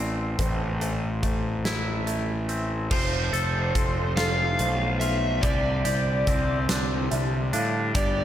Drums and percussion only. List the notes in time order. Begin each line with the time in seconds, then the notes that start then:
0.39 kick, closed hi-hat
0.81 closed hi-hat
1.23 kick, closed hi-hat
1.65 snare, closed hi-hat
2.07 closed hi-hat
2.49 closed hi-hat
2.91 kick, crash
3.34 closed hi-hat
3.75 kick, closed hi-hat
4.17 snare, closed hi-hat
4.59 closed hi-hat
5.01 closed hi-hat
5.43 kick, closed hi-hat
5.85 closed hi-hat
6.27 kick, closed hi-hat
6.69 snare, closed hi-hat
7.11 closed hi-hat
7.53 closed hi-hat
7.95 kick, closed hi-hat